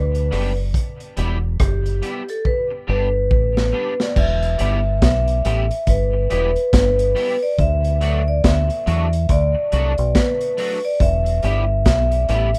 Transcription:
Already playing: fingered electric bass D2, vibraphone B4
0.15 closed hi-hat
0.31 fingered electric bass F#1, clean electric guitar G3 B3 D4 G4, cross-stick, open hi-hat
0.74 kick, closed hi-hat
1.00 closed hi-hat
1.17 fingered electric bass E1, clean electric guitar G3 B3 E4 G4, closed hi-hat
1.60 fingered electric bass F#1, vibraphone G4, kick, cross-stick, closed hi-hat
1.86 closed hi-hat
2.02 clean electric guitar G3 B3 E4 G4, closed hi-hat
2.29 vibraphone A4, closed hi-hat
2.45 vibraphone B4, kick
2.70 muted clean electric guitar stroke
2.87 fingered electric bass G1, clean electric guitar G3 B3 D4 G4, vibraphone B4
3.31 fingered electric bass A1, vibraphone B4, kick
3.57 snare
3.72 clean electric guitar G3 B3 D4 G4
4.00 vibraphone D5, snare
4.16 fingered electric bass E1, vibraphone E5, kick, crash
4.42 closed hi-hat
4.58 fingered electric bass G1, clean electric guitar G3 B3 E4 G4, closed hi-hat
5.02 fingered electric bass B1, vibraphone E5, kick, snare, closed hi-hat
5.28 closed hi-hat
5.45 fingered electric bass A1, clean electric guitar G3 B3 E4 G4, closed hi-hat
5.71 closed hi-hat
5.87 fingered electric bass G1, vibraphone B4, kick, closed hi-hat
6.13 muted clean electric guitar stroke
6.30 fingered electric bass E1, clean electric guitar G3 B3 E4 G4, vibraphone B4, closed hi-hat
6.56 closed hi-hat
6.73 fingered electric bass G1, vibraphone B4, kick, snare, closed hi-hat
6.99 closed hi-hat
7.15 clean electric guitar G3 B3 E4 G4, open hi-hat
7.43 vibraphone D5
7.59 fingered electric bass D2, vibraphone E5, kick, closed hi-hat
7.84 closed hi-hat
8.01 clean electric guitar F#3 A3 D4 F#4, closed hi-hat
8.28 vibraphone D5
8.44 fingered electric bass D2, vibraphone E5, kick, snare, closed hi-hat
8.70 closed hi-hat
8.86 fingered electric bass E2, clean electric guitar F#3 A3 D4 F#4, closed hi-hat
9.13 closed hi-hat
9.29 fingered electric bass D2, vibraphone D5, kick, closed hi-hat
9.55 muted clean electric guitar stroke
9.72 fingered electric bass C2, clean electric guitar F#3 A3 D4 F#4, closed hi-hat
9.98 fingered electric bass B1, closed hi-hat
10.15 vibraphone B4, kick, snare, closed hi-hat
10.41 closed hi-hat
10.57 clean electric guitar F#3 A3 D4 F#4, open hi-hat
10.85 vibraphone D5
11.00 fingered electric bass E1, vibraphone E5, kick, closed hi-hat
11.26 closed hi-hat
11.43 fingered electric bass G1, clean electric guitar G3 B3 E4 G4, closed hi-hat
11.85 fingered electric bass B1, vibraphone E5, kick, snare, closed hi-hat
12.12 closed hi-hat
12.29 fingered electric bass A1, clean electric guitar G3 B3 E4 G4, closed hi-hat
12.54 closed hi-hat

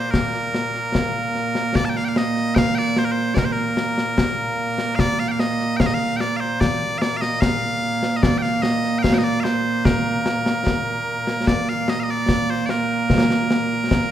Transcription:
Already playing: bagpipes A#2 A#3 C5
0.11 bagpipes A#4, concert bass drum, snare
0.34 snare
0.54 snare
0.74 snare
0.95 concert bass drum, snare
1.35 snare
1.55 snare
1.75 bagpipes D5, concert bass drum, snare
1.85 bagpipes A5
1.89 bagpipes G5
1.96 bagpipes F5, snare
2.05 bagpipes F5 G5
2.16 bagpipes D#5, snare
2.36 snare
2.55 bagpipes F5 G5, concert bass drum, snare
2.75 bagpipes D5 G5
2.96 bagpipes C5, snare
3.05 bagpipes A#4
3.12 bagpipes C5
3.34 bagpipes A#4 D5, concert bass drum, snare
3.45 bagpipes C5
3.52 bagpipes A#4
3.77 snare
3.98 snare
4.18 concert bass drum, snare
4.78 snare
4.95 bagpipes F5, concert bass drum, snare
5.00 bagpipes D5
5.19 bagpipes F5, snare
5.28 bagpipes F5 G5
5.39 bagpipes D#5, snare
5.60 snare
5.77 bagpipes F5 G5, concert bass drum, snare
5.86 bagpipes D#5
5.94 bagpipes F5
6.17 bagpipes G5
6.21 bagpipes D5, snare
6.36 bagpipes C5 F5
6.61 bagpipes D5, concert bass drum, snare
6.98 bagpipes D5 F5, snare
7.17 bagpipes F5
7.21 bagpipes D#5, snare
7.41 bagpipes F5, concert bass drum, snare
8.03 snare
8.17 bagpipes D#5
8.22 bagpipes D5, concert bass drum, snare
8.38 bagpipes G5
8.42 bagpipes F5, snare
8.62 bagpipes D#5, snare
8.84 snare
8.99 bagpipes F5 G5
9.04 concert bass drum, snare
9.14 bagpipes G5
9.18 bagpipes D#5
9.24 bagpipes D5
9.40 bagpipes C5 F5
9.45 snare
9.85 bagpipes A#4, concert bass drum, snare
10.26 snare
10.46 snare
10.67 concert bass drum, snare
11.27 snare
11.47 bagpipes D5, concert bass drum, snare
11.68 bagpipes F5, snare
11.88 bagpipes D#5, snare
12.00 bagpipes D#5 F5
12.08 bagpipes D5, snare
12.29 concert bass drum, snare
12.50 bagpipes C5
12.66 bagpipes D5, snare
12.70 bagpipes A#4
13.10 concert bass drum, snare
13.30 snare
13.51 snare
13.91 concert bass drum, snare

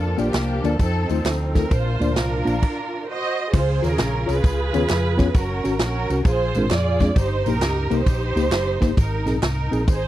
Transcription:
Already playing: fingered electric bass F2, tonewheel organ F3 A#3 D4 A#4, string section D4 F4 A4
0.18 fingered electric bass A#1, tine electric piano A#3 D4 F4 D5, string section A#3 D4 G4, ride, tambourine
0.33 fingered electric bass C2, snare, clap, ride, tambourine
0.64 fingered electric bass D2, tine electric piano A#3 D4 F4 D5, string section A4, ride, tambourine
0.79 fingered electric bass F2, tonewheel organ F3 C4 D#4 A4, string section C4 D#4 A4, kick, ride, tambourine
1.09 fingered electric bass D#2, tine electric piano A3 D#4 F4 C5, ride, tambourine
1.25 fingered electric bass D2, snare, clap, ride, tambourine
1.54 tine electric piano A3 D#4 F4 A4, string section A#4, kick, snare, ride, tambourine
1.70 fingered electric bass A#1, tine electric piano A#2, tonewheel organ F3 A#3 D4 A#4, string section F4 C5, kick, ride, tambourine
2.00 fingered electric bass D2, tine electric piano A#3 D4 F4 D5, ride, tambourine
2.16 fingered electric bass C2, string section D4 F4 A#4, snare, clap, ride, tambourine
2.45 fingered electric bass A#1, tine electric piano A#3 D4 F4 F5, ride, tambourine
2.63 kick, crash
3.09 string section F#4 C5 D#5
3.53 fingered electric bass C#2, tine electric piano C#3, string section F4 G#4 C5, kick, crash, tambourine
3.83 fingered electric bass D#2, string section C#4 F4 A#4, tine electric piano F4 G#4 C#5, snare, ride, tambourine
3.98 fingered electric bass A#1, snare, clap, ride, tambourine
4.26 fingered electric bass C2, tine electric piano F4 G#4 C#5, string section F4 G#4 B4, ride, tambourine
4.43 fingered electric bass C#2, tine electric piano C#3, kick, ride, tambourine
4.73 fingered electric bass D#2, tine electric piano B3 C#4 F4 G#4 C#5, ride, tambourine
4.89 fingered electric bass F2, snare, clap, ride, tambourine
5.17 tine electric piano B3 C#4 F4 G#4 C#5, kick, snare, ride, tambourine
5.34 fingered electric bass F#1, string section C#4 F#4 A#4, kick, ride, tambourine
5.64 fingered electric bass G#1, tine electric piano C#4 F#4 A#4, snare, ride, tambourine
5.79 fingered electric bass A#1, string section C#4 F#4 A#4, snare, clap, ride, tambourine
6.10 fingered electric bass C2, tine electric piano C#4 F#4 A#4, ride, tambourine
6.25 fingered electric bass A#1, tine electric piano A#2, string section F4 G#4 C5, kick, ride, tambourine
6.55 fingered electric bass G#1, tine electric piano G#3 C4 D4 F4 A#4, ride, tambourine
6.71 fingered electric bass F2, string section F4 G#4 D5, snare, clap, ride, tambourine
7.00 tine electric piano G#3 C4 D4 F4 G#4, kick, snare, ride, tambourine
7.16 fingered electric bass G1, tine electric piano G2, string section D#4 G4 C5, kick, ride, tambourine
7.46 fingered electric bass A#1, tine electric piano A#3 D#4 G4, string section D#4 G4 A#4, ride, tambourine
7.61 fingered electric bass C#2, snare, clap, ride, tambourine
7.90 fingered electric bass C2, tine electric piano A#3 D#4 A#4, string section D#4 G4 C5, ride, tambourine
8.06 fingered electric bass A#1, kick, ride, tambourine
8.36 fingered electric bass C#2, tine electric piano A#3 D#4 G4, ride, tambourine
8.51 fingered electric bass F#1, snare, clap, ride, tambourine
8.81 fingered electric bass G1, tine electric piano A#3 D#4 G4, kick, snare, ride, tambourine
8.97 fingered electric bass G#1, tine electric piano G#2, string section D#4 A#4, kick, ride, tambourine
9.26 fingered electric bass A#1, tine electric piano C4 D#4 G#4, snare, ride, tambourine
9.42 fingered electric bass C2, string section D#4 A#4, snare, clap, ride, tambourine
9.72 fingered electric bass A#1, tine electric piano C4 D#4 G#4, ride, tambourine
9.87 fingered electric bass G#1, string section D#4 G#4 C5, kick, ride, tambourine

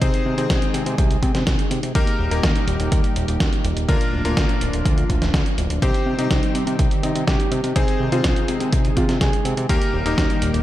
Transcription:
Already playing: analog synth pad C3 D#3 D#4
0.01 analog synth bass C2, analog synth pad G#3 G#4, electric grand piano C4 D#4 G#4 C5, kick, closed hi-hat
0.14 closed hi-hat
0.26 analog synth bass C3
0.38 analog synth bass C3, electric grand piano C4 D#4 G#4 C5, closed hi-hat
0.50 analog synth bass C2, kick, snare, closed hi-hat
0.62 closed hi-hat
0.74 analog synth bass C3, closed hi-hat
0.86 analog synth bass C3, closed hi-hat
0.98 analog synth bass C2, kick, closed hi-hat
1.11 closed hi-hat
1.23 analog synth bass C3, kick, closed hi-hat
1.35 analog synth bass C3, snare, closed hi-hat
1.47 analog synth bass C2, kick, snare, closed hi-hat
1.59 closed hi-hat
1.71 analog synth bass C3, closed hi-hat
1.83 analog synth bass C3, closed hi-hat
1.95 analog synth bass D#2, analog synth pad A#2 G3 D#4 G4, electric grand piano A#3 D#4 G4 A#4, kick, closed hi-hat
2.07 closed hi-hat
2.19 analog synth bass D#1
2.31 analog synth bass D#1, electric grand piano A#3 D#4 G4 A#4, closed hi-hat
2.43 analog synth bass D#2, kick, snare, closed hi-hat
2.56 closed hi-hat
2.68 analog synth bass D#1, closed hi-hat
2.80 analog synth bass D#1, closed hi-hat
2.92 analog synth bass D#2, kick, closed hi-hat
3.04 closed hi-hat
3.16 analog synth bass D#1, closed hi-hat
3.28 analog synth bass D#1, closed hi-hat
3.40 analog synth bass D#2, kick, snare, closed hi-hat
3.53 closed hi-hat
3.64 analog synth bass D#1, closed hi-hat
3.77 analog synth bass D#1, closed hi-hat
3.88 analog synth bass D2, analog synth pad D3 F3 D4 F4, electric grand piano A#3 D4 F4 A#4, kick, closed hi-hat
4.01 closed hi-hat
4.13 analog synth bass D1
4.25 analog synth bass D1, electric grand piano A#3 D4 F4 A#4, closed hi-hat
4.37 analog synth bass D2, kick, snare, closed hi-hat
4.49 closed hi-hat
4.61 analog synth bass D1, closed hi-hat
4.73 analog synth bass D1, closed hi-hat
4.85 analog synth bass D2, kick, closed hi-hat
4.98 closed hi-hat
5.10 analog synth bass D1, kick, closed hi-hat
5.22 analog synth bass D1, snare, closed hi-hat
5.34 analog synth bass D2, kick, snare, closed hi-hat
5.46 closed hi-hat
5.58 analog synth bass D1, closed hi-hat
5.70 analog synth bass D1, closed hi-hat
5.82 analog synth bass C2, analog synth pad C3 D#3 G3 D#4 G4, electric grand piano C4 D#4 G4 C5, grand piano G4, kick, closed hi-hat
5.94 closed hi-hat
6.06 analog synth bass C3
6.18 analog synth bass C3, electric grand piano C4 D#4 G4 C5, grand piano D#4, closed hi-hat
6.31 analog synth bass C2, kick, snare, closed hi-hat
6.43 closed hi-hat
6.55 analog synth bass C3, closed hi-hat
6.67 analog synth bass C3, closed hi-hat
6.79 analog synth bass C2, kick, closed hi-hat
6.91 closed hi-hat
7.03 analog synth bass C3, grand piano D#4, closed hi-hat
7.15 analog synth bass C3, closed hi-hat
7.27 analog synth bass C2, grand piano G4, kick, snare, closed hi-hat
7.40 closed hi-hat
7.52 analog synth bass C3, closed hi-hat
7.64 analog synth bass C3, closed hi-hat
7.76 analog synth bass C2, analog synth pad C3 G#3 G#4, electric grand piano C4 D#4 G#4 C5, grand piano G#4, kick, closed hi-hat
7.88 closed hi-hat
8.00 analog synth bass C3
8.12 analog synth bass C3, electric grand piano C4 D#4 G#4 C5, grand piano F4, closed hi-hat
8.24 analog synth bass C2, kick, snare, closed hi-hat
8.36 closed hi-hat
8.48 analog synth bass C3, closed hi-hat
8.60 analog synth bass C3, closed hi-hat
8.73 analog synth bass C2, kick, closed hi-hat
8.85 closed hi-hat
8.97 analog synth bass C3, grand piano F4, kick, closed hi-hat
9.09 analog synth bass C3, snare, closed hi-hat
9.21 analog synth bass C2, grand piano G#4, kick, snare, closed hi-hat
9.33 closed hi-hat
9.45 analog synth bass C3, closed hi-hat
9.57 analog synth bass C3, closed hi-hat
9.69 analog synth bass D#2, analog synth pad A#2 D#3 G3 D#4 G4, electric grand piano A#3 D#4 G4 A#4, grand piano G4, kick, closed hi-hat
9.82 closed hi-hat
9.94 analog synth bass D#1
10.06 analog synth bass D#1, electric grand piano A#3 D#4 G4 A#4, grand piano D#4, closed hi-hat
10.18 analog synth bass D#2, kick, snare, closed hi-hat
10.30 closed hi-hat
10.42 analog synth bass D#1, closed hi-hat
10.54 analog synth bass D#1, closed hi-hat

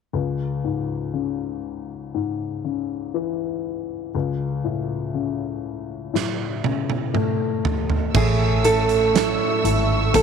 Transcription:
0.13 upright piano C#2
0.64 upright piano G#2
1.14 upright piano C#3
2.14 upright piano G#2
2.64 upright piano C#3
3.14 upright piano E3
4.15 upright piano C#2
4.64 upright piano A2
5.14 upright piano C#3
6.13 upright piano A2, snare
6.64 upright piano C#3, high tom
6.90 high tom
7.14 upright piano A3, mid tom
7.65 floor tom
7.89 floor tom
8.14 fingered electric bass A1, steel-string acoustic guitar A2, upright piano A3, string section A3 E5 C#6 E6, nylon-string guitar G#4, kick, crash
8.64 steel-string acoustic guitar C#4, upright piano E4, nylon-string guitar A4, closed hi-hat
8.89 closed hi-hat
9.14 upright piano A3, steel-string acoustic guitar E4, snare, closed hi-hat
9.64 fingered electric bass G#1, upright piano E4, steel-string acoustic guitar A4, closed hi-hat
10.14 fingered electric bass A1, upright piano A3, steel-string acoustic guitar E4, nylon-string guitar A4, kick, closed hi-hat

